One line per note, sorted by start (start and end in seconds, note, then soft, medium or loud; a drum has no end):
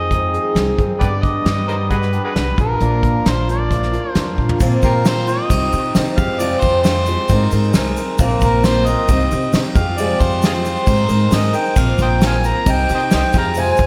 0.00 0.35 F2 medium
0.00 0.11 D#3 soft
0.00 0.99 F3 medium
0.00 0.12 G#3 soft
0.00 0.12 C4 soft
0.00 0.98 C4 medium
0.00 0.97 D#4 medium
0.00 0.12 G#4 medium
0.00 0.99 G#4 medium
0.00 0.78 D#5 loud
0.11 0.34 D#3 medium
0.11 0.33 G#3 medium
0.11 0.33 C4 medium
0.11 0.32 G#4 medium
0.11 kick medium
0.11 closed hi-hat medium
0.34 0.80 D#3 medium
0.34 0.79 G#3 medium
0.34 0.79 C4 medium
0.34 0.78 G#4 medium
0.34 closed hi-hat medium
0.55 0.73 C2 medium
0.55 snare loud
0.55 closed hi-hat medium
0.79 0.96 F#2 medium
0.79 1.02 D#3 soft
0.79 1.02 G#3 medium
0.79 1.02 C4 medium
0.79 1.01 G#4 medium
0.79 kick medium
0.79 closed hi-hat medium
1.00 1.36 G2 medium
1.00 1.46 G2 medium
1.00 1.46 D3 medium
1.00 1.44 G3 medium
1.00 1.45 B3 medium
1.00 1.47 D4 medium
1.00 1.07 G4 medium
1.00 1.46 G4 medium
1.00 2.58 G4 medium
1.00 1.07 B4 medium
1.00 2.58 B4 medium
1.00 1.24 D5 loud
1.00 kick loud
1.00 closed hi-hat medium
1.04 2.58 G3 medium
1.23 1.67 D#5 loud
1.23 kick medium
1.23 closed hi-hat medium
1.45 2.15 G2 loud
1.45 1.68 G3 medium
1.45 1.68 B3 medium
1.45 1.67 D4 medium
1.45 1.67 G4 medium
1.45 snare loud
1.45 closed hi-hat medium
1.68 1.89 G3 soft
1.68 1.90 B3 soft
1.68 1.91 D4 soft
1.68 1.91 G4 medium
1.68 1.75 A#4 medium
1.68 1.76 C5 medium
1.68 1.89 D#5 medium
1.68 closed hi-hat medium
1.90 2.13 G3 medium
1.90 2.13 B3 medium
1.90 2.12 D4 medium
1.90 1.96 F#4 medium
1.90 2.11 G4 medium
1.90 1.98 G#4 medium
1.90 2.22 B4 medium
1.90 kick medium
1.90 closed hi-hat medium
2.02 snare soft
2.12 2.59 G3 soft
2.12 2.59 B3 soft
2.12 2.58 D4 soft
2.12 2.58 G4 medium
2.12 closed hi-hat medium
2.24 2.32 F#4 medium
2.24 2.32 G#4 medium
2.24 2.56 B4 medium
2.36 2.53 C2 medium
2.36 snare loud
2.36 closed hi-hat medium
2.58 2.76 A#1 medium
2.58 2.80 A#3 soft
2.58 4.59 D4 medium
2.58 2.80 D4 soft
2.58 2.80 F4 soft
2.58 4.59 F4 medium
2.58 4.59 A#4 medium
2.58 3.30 A#4 medium
2.58 kick loud
2.58 closed hi-hat medium
2.80 3.16 A#1 medium
2.80 3.26 A#2 medium
2.80 3.24 F3 medium
2.80 3.25 A#3 medium
2.80 3.26 D4 medium
2.80 3.26 F4 medium
2.80 closed hi-hat medium
3.03 kick medium
3.03 closed hi-hat medium
3.25 3.96 A#1 medium
3.25 3.48 F3 medium
3.25 3.49 A#3 medium
3.25 3.48 D4 medium
3.25 3.46 F4 medium
3.25 3.50 C5 medium
3.25 snare loud
3.25 closed hi-hat medium
3.48 3.71 A#3 soft
3.48 3.71 D4 soft
3.48 3.70 F4 medium
3.48 4.11 D5 medium
3.48 closed hi-hat medium
3.71 3.93 F3 medium
3.71 3.93 A#3 medium
3.71 3.93 D4 medium
3.71 3.91 F4 medium
3.71 kick medium
3.71 closed hi-hat medium
3.83 snare soft
3.92 4.38 A#3 soft
3.92 4.36 D4 soft
3.92 4.35 F4 medium
3.92 closed hi-hat medium
4.11 4.33 F2 medium
4.11 4.35 C5 medium
4.11 closed hi-hat medium
4.15 snare loud
4.36 4.56 A#2 medium
4.36 4.60 A#3 soft
4.36 4.60 D4 medium
4.36 4.59 F4 medium
4.36 kick medium
4.49 floor tom medium
4.60 5.28 A#2 medium
4.60 4.78 A#2 loud
4.60 5.28 F3 medium
4.60 5.27 A#3 loud
4.60 5.49 C4 medium
4.60 5.28 C4 loud
4.60 5.50 F4 medium
4.60 5.25 F4 loud
4.60 5.49 A#4 medium
4.60 kick loud
4.60 crash loud
4.60 shaker loud
4.71 shaker soft
4.82 5.35 A#2 medium
4.82 4.92 F4 medium
4.82 4.92 G4 medium
4.82 5.04 A#4 medium
4.82 kick medium
4.82 ride medium
4.82 shaker medium
5.05 5.30 C5 medium
5.05 snare loud
5.05 ride loud
5.05 shaker loud
5.27 5.49 A#3 soft
5.27 5.48 C4 soft
5.27 5.50 F4 medium
5.27 5.96 D#5 loud
5.27 ride medium
5.27 shaker medium
5.49 5.68 C2 medium
5.49 5.72 D#3 medium
5.49 5.72 C4 medium
5.49 7.29 C4 medium
5.49 5.72 D#4 medium
5.49 6.18 D#4 medium
5.49 5.71 G4 medium
5.49 7.28 G4 medium
5.49 kick loud
5.49 ride loud
5.49 shaker medium
5.72 5.90 C3 medium
5.72 5.96 C4 soft
5.72 5.95 D#4 soft
5.72 5.95 G4 soft
5.72 ride medium
5.72 shaker medium
5.85 shaker soft
5.95 6.04 C3 medium
5.95 6.18 D#3 medium
5.95 6.18 C4 medium
5.95 6.18 D#4 medium
5.95 6.17 G4 medium
5.95 snare loud
5.95 ride loud
5.95 shaker medium
6.07 shaker soft
6.17 6.52 F2 loud
6.17 6.39 F3 soft
6.17 6.39 G#3 soft
6.17 6.40 F4 medium
6.17 6.39 G4 medium
6.17 6.41 F5 loud
6.17 kick loud
6.17 ride medium
6.17 shaker medium
6.21 7.30 F3 medium
6.21 7.30 G#3 medium
6.40 7.07 F2 medium
6.40 7.07 C3 medium
6.40 7.07 F3 medium
6.40 7.07 G#3 medium
6.40 7.07 F4 medium
6.40 7.06 G4 medium
6.40 6.62 D5 loud
6.40 ride loud
6.40 shaker loud
6.51 shaker soft
6.60 7.15 F2 medium
6.60 6.81 C5 medium
6.60 kick medium
6.60 ride medium
6.60 shaker medium
6.81 7.69 C5 medium
6.81 snare loud
6.81 ride loud
6.81 shaker medium
7.06 7.29 F3 soft
7.06 7.29 G#3 medium
7.06 7.30 F4 medium
7.06 7.30 G4 medium
7.06 ride medium
7.06 shaker medium
7.28 7.47 G#2 loud
7.28 7.52 G#3 medium
7.28 8.19 G#3 medium
7.28 7.53 C4 medium
7.28 8.19 D#4 medium
7.28 7.53 D#4 medium
7.28 9.08 A#4 medium
7.28 8.19 C5 medium
7.28 kick loud
7.28 ride loud
7.28 shaker loud
7.33 7.51 A#4 medium
7.51 7.70 G#2 medium
7.51 7.76 C4 medium
7.51 7.75 D#4 medium
7.51 7.75 A#4 medium
7.51 ride medium
7.51 shaker medium
7.63 shaker soft
7.73 7.92 C2 medium
7.73 7.98 G#3 medium
7.73 7.98 C4 medium
7.73 7.98 D#4 medium
7.73 snare loud
7.73 ride loud
7.73 shaker loud
7.78 7.96 A#4 medium
7.85 shaker soft
7.96 8.20 C4 medium
7.96 8.20 D#4 medium
7.96 8.20 A#4 medium
7.96 ride medium
7.96 shaker medium
8.18 8.37 A#1 loud
8.18 8.87 A#2 loud
8.18 8.87 F3 loud
8.18 8.87 A#3 loud
8.18 9.06 C4 medium
8.18 8.88 C4 loud
8.18 9.09 F4 medium
8.18 8.86 A#4 loud
8.18 kick loud
8.18 ride loud
8.18 shaker loud
8.30 shaker soft
8.41 8.94 A#1 loud
8.41 8.64 A#4 medium
8.41 kick medium
8.41 ride medium
8.41 shaker medium
8.64 8.88 C5 loud
8.64 snare loud
8.64 ride loud
8.64 shaker loud
8.86 9.10 A#3 soft
8.86 9.09 C4 medium
8.86 9.09 A#4 medium
8.86 9.53 D#5 loud
8.86 ride medium
8.86 shaker medium
9.08 9.26 C2 loud
9.08 9.31 D#3 medium
9.08 10.86 C4 medium
9.08 9.32 C4 medium
9.08 9.75 D#4 medium
9.08 9.33 D#4 medium
9.08 9.73 G4 medium
9.08 9.32 G4 medium
9.08 kick loud
9.08 ride loud
9.08 shaker loud
9.20 shaker soft
9.31 9.49 C3 loud
9.31 9.55 D#4 soft
9.31 9.55 G4 medium
9.31 ride medium
9.31 shaker medium
9.35 9.54 C4 soft
9.42 shaker soft
9.53 9.62 C3 medium
9.53 9.77 D#3 medium
9.53 9.77 C4 medium
9.53 9.77 D#4 medium
9.53 snare loud
9.53 ride loud
9.53 shaker medium
9.57 9.75 G4 medium
9.64 shaker soft
9.74 10.10 F2 loud
9.74 10.86 F3 medium
9.74 9.98 G#3 soft
9.74 9.99 F4 medium
9.74 10.86 G4 medium
9.74 9.98 G4 medium
9.74 9.99 F5 medium
9.74 kick loud
9.74 ride medium
9.74 shaker medium
9.79 9.98 F3 soft
9.98 10.66 F2 medium
9.98 10.66 C3 medium
9.98 10.65 F3 medium
9.98 10.64 G#3 medium
9.98 10.63 F4 medium
9.98 10.63 G4 loud
9.98 10.23 D5 medium
9.98 ride loud
9.98 shaker loud
10.09 shaker soft
10.20 10.73 F2 medium
10.20 10.43 C5 medium
10.20 kick medium
10.20 ride medium
10.20 shaker medium
10.31 shaker soft
10.42 10.52 F4 medium
10.42 10.52 G#4 medium
10.42 11.36 C5 medium
10.42 snare loud
10.42 ride loud
10.42 shaker medium
10.64 10.86 F3 soft
10.64 10.85 G#3 medium
10.64 10.88 F4 medium
10.64 10.87 G4 medium
10.64 ride medium
10.64 shaker medium
10.76 shaker soft
10.84 11.05 G#2 medium
10.84 11.75 G#3 medium
10.84 11.10 G#3 medium
10.84 11.09 C4 medium
10.84 11.75 D#4 medium
10.84 11.08 D#4 medium
10.84 12.64 A#4 medium
10.84 11.75 C5 medium
10.84 kick loud
10.84 ride loud
10.84 shaker medium
10.89 11.07 A#4 medium
10.97 shaker soft
11.08 11.27 G#2 medium
11.08 11.31 C4 medium
11.08 11.31 D#4 medium
11.08 11.32 A#4 medium
11.08 ride medium
11.08 shaker medium
11.19 shaker soft
11.31 11.49 G#2 medium
11.31 11.54 G#3 medium
11.31 11.53 C4 medium
11.31 11.53 D#4 medium
11.31 11.52 A#4 medium
11.31 11.58 D#5 medium
11.31 snare loud
11.31 ride loud
11.31 shaker loud
11.43 shaker soft
11.53 11.76 C4 soft
11.53 11.77 D#4 medium
11.53 11.76 A#4 medium
11.53 11.80 G5 medium
11.53 ride medium
11.53 shaker medium
11.65 shaker soft
11.76 11.94 A#1 loud
11.76 12.44 A#2 medium
11.76 12.44 F3 medium
11.76 12.45 A#3 medium
11.76 13.87 C4 medium
11.76 12.46 C4 medium
11.76 12.66 F4 medium
11.76 12.44 A#4 medium
11.76 12.01 F5 loud
11.76 kick loud
11.76 crash loud
11.76 shaker loud
11.98 12.51 A#1 medium
11.98 kick medium
11.98 ride medium
11.98 shaker medium
12.02 12.08 C5 medium
12.02 12.09 D#5 medium
12.02 12.22 G5 medium
12.21 snare loud
12.21 ride medium
12.21 shaker medium
12.26 12.34 C5 medium
12.26 12.35 F5 medium
12.26 12.48 G#5 loud
12.44 12.67 A#3 soft
12.44 12.66 C4 medium
12.44 12.67 A#4 medium
12.44 12.73 A#5 loud
12.44 ride medium
12.44 shaker medium
12.66 12.84 C2 medium
12.66 12.89 D#3 medium
12.66 12.89 C4 medium
12.66 13.33 D#4 medium
12.66 12.90 D#4 medium
12.66 13.33 G4 medium
12.66 12.88 G4 medium
12.66 kick loud
12.66 ride loud
12.66 shaker loud
12.71 12.92 G5 loud
12.78 shaker soft
12.89 13.07 C3 medium
12.89 13.10 C4 soft
12.89 13.11 D#4 medium
12.89 13.12 G4 medium
12.89 ride medium
12.89 shaker medium
12.95 13.01 C5 medium
12.95 13.02 D#5 medium
12.95 13.13 G5 loud
13.00 shaker soft
13.10 13.21 C2 medium
13.10 13.34 D#3 medium
13.10 13.34 C4 medium
13.10 13.35 D#4 medium
13.10 13.33 G4 medium
13.10 snare loud
13.10 ride loud
13.10 shaker medium
13.14 13.23 C5 medium
13.14 13.23 D#5 medium
13.14 13.34 G5 loud
13.22 shaker soft
13.33 13.69 F2 loud
13.33 13.87 F3 medium
13.33 13.55 F3 soft
13.33 13.56 G#3 soft
13.33 13.57 F4 medium
13.33 13.57 G4 medium
13.33 13.87 G#4 medium
13.33 kick loud
13.33 ride medium
13.33 shaker medium
13.38 13.46 F5 medium
13.38 13.45 G5 medium
13.38 13.62 A#5 medium
13.54 13.87 F2 medium
13.54 13.87 C3 medium
13.54 13.87 F3 medium
13.54 13.87 G#3 medium
13.54 13.87 F4 medium
13.54 ride loud
13.54 shaker medium
13.60 13.70 G#5 loud
13.67 shaker soft
13.72 13.87 G#5 medium
13.77 13.87 F2 medium
13.77 kick medium
13.77 ride medium
13.77 shaker medium